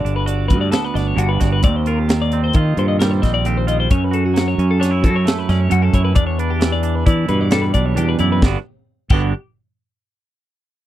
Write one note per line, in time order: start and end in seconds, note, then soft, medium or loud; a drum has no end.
0.00 0.50 G2 medium
0.00 1.63 D3 medium
0.00 0.25 F#4 soft
0.00 0.16 D5 medium
0.05 0.52 G1 medium
0.05 0.93 D4 medium
0.05 closed hi-hat medium
0.16 0.26 B4 medium
0.26 1.39 F#4 medium
0.26 0.48 D5 medium
0.26 closed hi-hat medium
0.48 1.18 D2 medium
0.48 0.72 G2 medium
0.48 0.61 B4 medium
0.48 kick medium
0.48 closed hi-hat medium
0.61 0.71 D5 medium
0.72 1.61 B3 medium
0.72 0.85 A4 medium
0.72 snare loud
0.72 closed hi-hat loud
0.85 0.95 B4 medium
0.94 1.17 G1 medium
0.94 1.16 D4 medium
0.94 1.07 D5 medium
0.94 snare soft
0.94 closed hi-hat medium
1.07 1.19 C#5 medium
1.16 1.39 G1 loud
1.16 1.63 G2 medium
1.16 1.60 D4 medium
1.16 1.30 F#4 medium
1.16 closed hi-hat loud
1.29 1.41 B4 medium
1.40 1.65 G1 medium
1.40 1.61 F#4 medium
1.40 1.52 D5 medium
1.40 kick medium
1.40 snare soft
1.40 closed hi-hat medium
1.52 1.64 B4 medium
1.62 3.44 D#2 medium
1.62 2.51 D#2 medium
1.62 2.32 C4 medium
1.62 1.76 D5 medium
1.62 kick loud
1.62 closed hi-hat medium
1.76 1.87 C5 medium
1.86 2.55 F4 medium
1.86 1.99 A#4 medium
1.86 closed hi-hat medium
1.99 2.21 G4 medium
2.09 3.88 D#3 medium
2.09 snare loud
2.09 closed hi-hat medium
2.22 2.43 D5 medium
2.32 3.22 C4 medium
2.32 closed hi-hat medium
2.44 2.55 C5 medium
2.53 2.76 D#3 medium
2.53 3.66 F4 medium
2.53 2.78 D#5 medium
2.53 kick loud
2.53 closed hi-hat medium
2.77 3.19 G2 medium
2.77 3.89 A#2 medium
2.77 2.88 C5 medium
2.77 closed hi-hat medium
2.88 2.99 D#5 medium
2.99 3.91 G3 medium
2.99 3.11 A#4 medium
2.99 snare loud
2.99 closed hi-hat medium
3.11 3.22 C5 medium
3.22 3.87 A#1 medium
3.22 3.45 C4 medium
3.22 3.34 D#5 medium
3.22 kick medium
3.22 snare soft
3.22 closed hi-hat medium
3.34 3.45 D5 medium
3.45 3.88 D#2 medium
3.45 3.89 C4 medium
3.45 3.57 G4 medium
3.45 closed hi-hat medium
3.57 3.68 C5 medium
3.67 3.88 F4 medium
3.67 3.79 D#5 medium
3.67 closed hi-hat medium
3.80 3.91 C5 medium
3.90 5.01 F#2 medium
3.90 4.55 F#2 loud
3.90 4.58 C#4 medium
3.90 4.04 C#5 loud
3.90 kick loud
3.90 closed hi-hat loud
4.04 4.15 B4 medium
4.11 4.79 F#4 medium
4.11 4.25 A4 medium
4.11 closed hi-hat medium
4.26 4.48 F#4 medium
4.34 6.14 F#3 medium
4.34 snare medium
4.34 closed hi-hat medium
4.48 4.70 C#5 medium
4.58 5.05 F#2 medium
4.58 5.48 C#4 medium
4.58 closed hi-hat medium
4.71 4.82 A4 medium
4.80 4.91 D4 medium
4.80 5.04 C#5 medium
4.80 snare soft
4.80 closed hi-hat loud
4.91 5.93 E4 medium
5.02 5.68 F#2 medium
5.02 5.25 F#3 medium
5.02 5.16 A4 medium
5.02 kick medium
5.02 closed hi-hat medium
5.16 5.28 C#5 medium
5.25 6.14 A3 medium
5.25 5.39 A4 medium
5.25 snare loud
5.25 closed hi-hat medium
5.39 5.49 B4 medium
5.49 5.70 F#2 medium
5.49 5.69 C#4 medium
5.49 5.61 D5 medium
5.49 snare soft
5.49 closed hi-hat medium
5.61 5.72 C#5 medium
5.69 6.13 F#2 medium
5.69 5.93 F#2 loud
5.69 6.14 C#4 medium
5.69 5.82 F#4 medium
5.69 closed hi-hat loud
5.82 5.94 A4 medium
5.93 6.16 F#2 medium
5.93 6.15 E4 medium
5.93 6.04 C#5 medium
5.93 kick medium
5.93 closed hi-hat medium
6.05 6.15 B4 medium
6.14 7.94 E2 medium
6.14 7.03 E2 medium
6.14 6.38 D4 medium
6.14 6.26 D5 loud
6.14 kick loud
6.14 closed hi-hat loud
6.27 6.39 C#5 medium
6.39 6.82 D4 medium
6.39 6.51 B4 medium
6.39 closed hi-hat medium
6.50 6.74 G4 medium
6.60 8.39 E3 medium
6.60 snare loud
6.60 closed hi-hat medium
6.72 6.96 D5 medium
6.83 7.73 D4 medium
6.83 closed hi-hat medium
6.96 7.06 B4 medium
7.06 7.28 E3 medium
7.06 8.19 E4 medium
7.06 7.28 D5 medium
7.06 kick loud
7.06 closed hi-hat medium
7.29 7.72 G2 medium
7.29 8.40 B2 medium
7.29 7.41 B4 medium
7.29 closed hi-hat medium
7.41 7.53 D5 medium
7.51 8.44 G3 medium
7.51 7.64 A4 medium
7.51 snare loud
7.51 closed hi-hat medium
7.62 7.73 B4 medium
7.74 7.96 B1 medium
7.74 7.95 D4 medium
7.74 7.86 D5 medium
7.74 kick medium
7.74 closed hi-hat medium
7.86 7.98 C#5 medium
7.95 8.39 E2 medium
7.95 8.18 E2 medium
7.95 8.40 D4 medium
7.95 8.09 G4 medium
7.95 closed hi-hat loud
8.09 8.19 B4 medium
8.19 8.41 F#2 medium
8.19 8.40 E4 medium
8.19 8.32 D5 medium
8.19 closed hi-hat medium
8.32 8.43 B4 medium
8.42 8.55 G1 medium
8.42 8.57 G2 medium
8.42 8.57 D3 medium
8.42 8.57 B3 medium
8.42 8.58 D4 medium
8.42 8.57 G4 medium
8.42 kick loud
8.42 snare loud
8.46 8.59 F#4 medium
9.10 9.32 G1 medium
9.10 9.31 G2 medium
9.10 9.32 D3 medium
9.10 9.32 B3 medium
9.10 9.34 G4 medium
9.10 kick loud
9.10 crash medium
9.14 9.33 D4 medium
9.14 9.33 F#4 medium